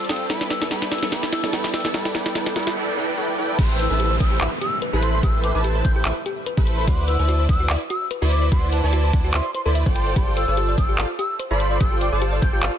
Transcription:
Already playing: G3 C4 F4 A4, riser
0.05 G3, closed hi-hat
0.09 C4 F4 A4 C5 D5 G5 E6, snare, closed hi-hat
0.13 closed hi-hat
0.16 closed hi-hat
0.29 G3 B3 D4 E4 A4 B4 D5 G5 B5, snare, closed hi-hat
0.41 snare
0.50 E6, snare, closed hi-hat
0.60 G3 B3 E4 A4 B4 D5 A5, snare
0.70 G3 B3 E4 A4 B4 D5 G5 B5, snare, closed hi-hat
0.82 snare, closed hi-hat
0.92 E6, snare, closed hi-hat
0.95 closed hi-hat
0.98 G3 B3, closed hi-hat
1.03 E4 A4 B4 D5 A5, snare
1.11 G3 B3 E4 A4 B4 D5 G5 B5, snare, closed hi-hat
1.23 snare
1.33 E6, snare, closed hi-hat
1.43 G3 B3 E4 A4 B4 D5 A5, snare
1.52 G3 B3 E4 A4 B4 D5 G5 B5, snare, closed hi-hat
1.64 snare, closed hi-hat
1.69 closed hi-hat
1.74 E6, snare, closed hi-hat
1.77 closed hi-hat
1.80 G3 B3, closed hi-hat
1.85 E4 A4 B4 D5 A5, snare
1.93 G3 B3 E4 A4 B4 D5 G5 B5, snare, closed hi-hat, noise sweep
2.05 snare
2.14 G3 B3 E4 A4 B4 D5 G5 B5, snare, closed hi-hat
2.26 snare
2.34 G3 B3 E4 A4 B4 D5 G5 B5, snare, closed hi-hat
2.46 snare, closed hi-hat
2.55 G3 B3 E4 A4 B4 D5 G5 B5, snare, closed hi-hat
2.60 closed hi-hat
2.63 closed hi-hat
2.67 snare
2.76 E4 A4 B4 D5 G5
2.97 E4 A4 B4 D5 G5
3.18 E4 A4 B4 D5 G5
3.38 E4 A4 B4 D5 G5
3.59 A1 E4 G4 B4 C5 C6, kick, closed hi-hat, crash, downlifter
3.79 B4 E6, closed hi-hat
3.90 A1 E4 A4 B4 C5 A5
4.00 G4, closed hi-hat
4.11 C5
4.20 A1 E4 A4 B4 C5 G5 E6, kick, closed hi-hat
4.31 G4
4.41 A1 E4 A4 B4 C5 E5, clap, closed hi-hat
4.61 G4 E6, closed hi-hat
4.82 B4, closed hi-hat
4.93 A1 E4 G4 A4 B4 C5 B5
5.03 C6, closed hi-hat
5.14 C5 C6
5.23 A1 E4 G4 A4 G5 E6, kick, closed hi-hat
5.44 B4 D6, closed hi-hat
5.55 A1 E4 A4 B4 C5 A5 D6
5.64 G4, closed hi-hat
5.75 C5
5.85 A1 E4 A4 B4 C5 G5 G6, kick, closed hi-hat
5.96 G4 G6
6.05 A1 E4 A4 B4 C5 E5, clap, closed hi-hat
6.26 G4, closed hi-hat
6.46 B4, closed hi-hat
6.57 A1 E4 G4 A4 B4 C5 B5, kick
6.67 closed hi-hat
6.78 C5
6.87 D2 F#4 D5 F#5 C6, kick, closed hi-hat
7.08 B4 E6, closed hi-hat
7.19 D2 E4 B4 C5 D5 A5
7.29 F#4, closed hi-hat
7.40 C5
7.49 D2 E4 B4 C5 F#5 E6, kick, closed hi-hat
7.60 F#4
7.70 D2 E4 B4 C5 D5 E5, clap, closed hi-hat
7.90 F#4 E6, closed hi-hat
8.11 B4, closed hi-hat
8.22 D2 E4 F#4 B4 C5 D5 B5
8.31 D6, closed hi-hat
8.42 C5
8.52 D2 E4 F#4 D5 C6, kick, closed hi-hat
8.72 B4 A5, closed hi-hat
8.83 D2 E4 B4 C5 D5 A5
8.93 F#4, closed hi-hat
9.04 C5
9.13 D2 E4 B4 C5 F#5, kick, closed hi-hat
9.25 F#4
9.34 D2 E4 B4 C5 D5 E5 C6, clap, closed hi-hat
9.55 C5 C6, closed hi-hat
9.66 D2 E4 A4 B4 C5 D5 B5 C6
9.75 E5, closed hi-hat
9.86 G1 F4 A4 C5 D5 G5, kick
9.96 G5 C6, closed hi-hat
10.07 C5
10.16 G1 G4 A4 D5 G5 C6, kick, closed hi-hat
10.27 G4
10.37 C5 E6, closed hi-hat
10.48 G1 F4 A4 C5 D5 A5
10.57 G4, closed hi-hat
10.68 D5
10.78 G1 F4 A4 C5 D5 G5 E6, kick, closed hi-hat
10.89 G4
10.98 G1 F4 A4 C5 D5 F5, clap, closed hi-hat
11.19 G4 E6, closed hi-hat
11.39 C5, closed hi-hat
11.51 G1 F4 A4 C5 D5 B5
11.60 C6, closed hi-hat
11.71 D5 C6
11.81 G1 G4 E6, kick, closed hi-hat
11.92 G4
12.01 C5 D6, closed hi-hat
12.12 G1 F4 A4 C5 D5 A5 D6
12.22 G4, closed hi-hat
12.33 D5
12.42 G1 F4 A4 C5 D5 G5 G6, kick, closed hi-hat
12.53 G4 G6
12.63 G1 F4 A4 C5 D5 F5, clap, closed hi-hat

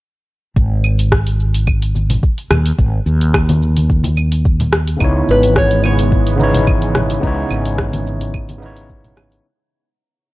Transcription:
0.56 G#1, kick, cabasa
0.84 cabasa, claves
0.99 open hi-hat, cabasa
1.12 kick, cross-stick, cabasa
1.27 open hi-hat
1.40 cabasa
1.54 open hi-hat, cabasa
1.67 kick, cabasa, claves
1.82 open hi-hat
1.95 high conga, cabasa
2.10 open hi-hat, high conga, low conga, cabasa
2.23 kick, cabasa
2.38 open hi-hat
2.51 D#2, cross-stick, low conga, cabasa, claves
2.66 open hi-hat, cabasa
2.79 G#1, kick, cabasa
3.06 D#2, cabasa
3.21 open hi-hat, cabasa
3.34 kick, cross-stick, cabasa, claves
3.49 open hi-hat, high conga
3.62 cabasa
3.77 open hi-hat, high conga, cabasa
3.90 kick, cabasa
4.04 open hi-hat, high conga
4.17 cabasa, claves
4.32 open hi-hat, cabasa
4.45 kick, cabasa
4.60 open hi-hat, low conga
4.73 cross-stick, cabasa
4.88 open hi-hat, cabasa
4.97 C#3 G#3 B3 D#4, claves
5.01 C#2 E3 E4 C#5, kick, cabasa
5.29 G#1 B4, cabasa
5.43 open hi-hat, cabasa
5.56 C#5, kick, cross-stick, cabasa
5.71 open hi-hat
5.84 C#5, cabasa, claves
5.99 open hi-hat, cabasa
6.12 kick, cabasa
6.27 open hi-hat
6.36 C#3 B3 D#4, high conga
6.40 E4 C#5, cabasa
6.53 open hi-hat, high conga, low conga, cabasa
6.67 kick, cabasa, claves
6.82 open hi-hat
6.95 cross-stick, low conga, cabasa
7.10 open hi-hat, cabasa
7.19 C#2 C#3 B3 D#4, kick
7.23 E4 C#5, cabasa
7.51 G#1, cabasa, claves
7.65 open hi-hat, cabasa
7.78 kick, cross-stick, cabasa
7.93 open hi-hat, high conga
8.07 cabasa
8.21 open hi-hat, high conga, cabasa
8.34 kick, cabasa, claves
8.49 open hi-hat, high conga
8.58 C#3 B3
8.62 D#4 E4 C#5, cabasa
8.77 open hi-hat, cabasa
8.90 kick, cabasa
9.04 open hi-hat, low conga
9.17 cross-stick, cabasa, claves
9.32 open hi-hat, cabasa

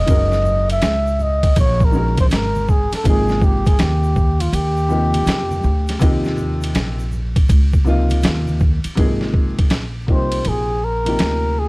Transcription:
Already playing: D#5
0.06 F#1 D#3 G#3 C#4 F#4 A#4, kick, ride, shaker
0.32 snare, shaker
0.45 low conga, shaker
0.69 E5, ride, shaker
0.82 C#2, snare, hi-hat pedal, ride, shaker
1.07 shaker
1.19 D#5, low conga, shaker
1.43 kick, ride, high conga, shaker
1.56 A#1 C#5, kick, ride, shaker
1.80 kick, shaker
1.85 A#4
1.91 D#3 G#3 C#4 F#4 A#4, shaker
2.17 C5, kick, ride, high conga, shaker
2.30 G#1 A#4, snare, hi-hat pedal, ride, shaker
2.55 high conga, shaker
2.68 G#4, kick, low conga, shaker
2.92 A4, muted upright bass stroke, snare, ride, shaker
3.03 G#1 C3 F3 A#3 D#4 G#4, kick, ride, shaker
3.08 G#4
3.28 snare, shaker
3.42 G4, kick, low conga, shaker
3.66 G#4, kick, ride, shaker
3.79 D#2 G4, snare, hi-hat pedal, ride, shaker
4.04 shaker
4.16 kick, low conga, shaker
4.40 F4, ride, high conga, shaker
4.53 D#2 G4, ride, shaker
4.77 shaker
4.89 C3 F3 A#3 D#4 G4, shaker
5.14 ride, high conga, shaker
5.26 F2, snare, hi-hat pedal, ride, shaker
5.51 high conga, shaker
5.63 D2, low conga, shaker
5.87 snare, ride, shaker
5.99 D#2 C3 F3 A#3 D#4, kick, ride, shaker
6.03 G4
6.24 snare, shaker
6.37 low conga, shaker
6.61 ride, shaker
6.75 A#1, snare, hi-hat pedal, ride, shaker
7.00 shaker
7.12 low conga, shaker
7.36 kick, ride, high conga, shaker
7.49 C#2, kick, ride, shaker
7.73 kick, shaker
7.84 C3 F3 A#3 D#4, shaker
7.88 F4
8.10 ride, high conga, shaker
8.22 D#2, snare, hi-hat pedal, ride, shaker
8.47 high conga, shaker
8.60 kick, low conga, shaker
8.84 muted upright bass stroke, ride, shaker
8.95 G#1 C3 F3 A#3 D#4, kick, ride
8.99 G#4
9.21 snare
9.34 kick
9.59 kick, ride
9.70 A#1, snare, hi-hat pedal, ride
10.06 C2 C3 F3 A#3 D#4 G4, kick
10.12 C5
10.32 ride
10.45 A#1 G#4, ride
10.84 A#4
11.05 C3 F3 A#3 D#4, ride
11.09 G4
11.19 D2, snare, hi-hat pedal, ride
11.59 G#4

